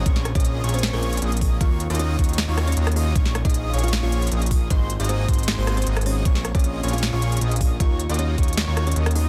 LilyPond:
<<
  \new Staff \with { instrumentName = "Digital synth lead" } { \time 4/4 \key bes \minor \tempo 4 = 155 des'''8 r16 ees'''8. des'''8. des'''8. ees'''4 | des'''8 r16 ees'''8. des'''8. des'''8. ees'''4 | des'''8 r16 ees'''8. des'''8. des'''8. ees'''4 | c'''8 r16 ees'''8. c'''8. c'''8. ees'''4 |
des'''8 r16 ees'''8. des'''8. des'''8. ees'''4 | des'''8 r16 ees'''8. des'''8. des'''8. ees'''4 | }
  \new Staff \with { instrumentName = "Kalimba" } { \time 4/4 \key bes \minor r8. <des' des''>8. r16 <c' c''>8 <bes bes'>8 r4 r16 | <f' f''>8. r16 <des' des''>8. r4 <des' des''>8 r16 <ees' ees''>8 | r8. <ees' ees''>8. r16 <f' f''>8 <f' f''>8 r4 r16 | <ees' ees''>8. r16 <c' c''>8. r4 <c' c''>8 r16 <des' des''>8 |
r8. <des' des''>8. r16 <f' f''>8 <f' f''>8 r4 r16 | <f' f''>8. r16 <des' des''>8. r4 <des' des''>8 r16 <ees' ees''>8 | }
  \new Staff \with { instrumentName = "Analog polysynth" } { \time 4/4 \key bes \minor <bes des' f' aes' des''>8 r16 <bes des' f' aes' ees''>8. <bes des' f' aes' des''>8. <bes des' f' aes' des''>8. <bes des' f' aes' ees''>4 | <bes ees' f' ges' des''>8 r16 <bes ees' f' ges' ees''>8. <bes ees' f' ges' des''>8. <bes ees' f' ges' des''>8. <bes ees' f' ges' ees''>4 | <bes des' f' aes' des''>8 r16 <bes des' f' aes' ees''>8. <bes des' f' aes' des''>8. <bes des' f' aes' des''>8. <bes des' f' aes' ees''>4 | <bes ees' ges' aes' c''>8 r16 <bes ees' ges' aes' ees''>8. <bes ees' ges' aes' c''>8. <bes ees' ges' aes' c''>8. <bes ees' ges' aes' ees''>4 |
<bes des' f' aes' des''>8 r16 <bes des' f' aes' ees''>8. <bes des' f' aes' des''>8. <bes des' f' aes' des''>8. <bes des' f' aes' ees''>4 | <bes ees' f' ges' des''>8 r16 <bes ees' f' ges' ees''>8. <bes ees' f' ges' des''>8. <bes ees' f' ges' des''>8. <bes ees' f' ges' ees''>4 | }
  \new Staff \with { instrumentName = "Analog synth bass" } { \clef bass \time 4/4 \key bes \minor bes,,8. bes,,8. bes,,8. bes,,8. bes,,4 | ees,8. ees,8. ees,8. ees,8. ees,4 | bes,,8. bes,,8. bes,,8. bes,,8. bes,,4 | aes,,8. aes,,8. aes,,8. aes,,8. aes,,4 |
bes,,8. bes,,8. bes,,8. bes,,8. bes,,4 | ees,8. ees,8. ees,8. ees,8. ees,4 | }
  \new DrumStaff \with { instrumentName = "Drums" } \drummode { \time 4/4 <hh bd>16 sn16 <hh ss>16 <hh bd>32 hh32 hh8 hh32 hh32 hh32 hh32 <hh sn>8 hh16 hh32 hh32 hh16 hh32 hh32 <hho bd>8 | <hh bd>8 hh16 hh32 hh32 hh8 <hh bd>32 hh32 hh32 hh32 <hh sn>8 <hh ss>16 hh32 hh32 hh16 <hh ss>32 hh32 hho8 | <hh bd>16 sn16 <hh ss>16 <hh bd>32 hh32 hh8 hh32 hh32 hh32 hh32 <hh sn>8 hh16 hh32 hh32 hh16 hh32 hh32 <hho bd>8 | <hh bd>8 hh16 hh32 hh32 hh8 <hh bd>32 hh32 hh32 hh32 <hh sn>8 <hh ss>16 hh32 hh32 hh16 <hh ss>32 hh32 hho8 |
<hh bd>16 sn16 <hh ss>16 <hh bd>32 hh32 hh8 hh32 hh32 hh32 hh32 sn8 hh16 hh32 hh32 hh16 hh32 hh32 <hho bd>8 | <hh bd cymr>8 hh16 hh32 hh32 hh8 <hh bd>32 hh32 hh32 hh32 <hh sn>8 <hh ss>16 hh32 hh32 hh16 <hh ss>32 hh32 hho8 | }
>>